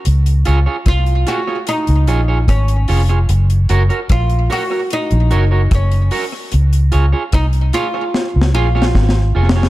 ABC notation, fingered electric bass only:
X:1
M:4/4
L:1/16
Q:1/4=74
K:Db
V:1 name="Fingered electric bass" clef=bass
D,,2 D,, z C,,2 z3 D,, B,,,2 A,,,2 F,,,2 | G,,,2 G,,, z B,,,2 z3 B,,, G,,,2 G,,,2 z2 | D,,2 D,, z C,,2 z3 D,, B,,,2 A,,,2 F,,,2 |]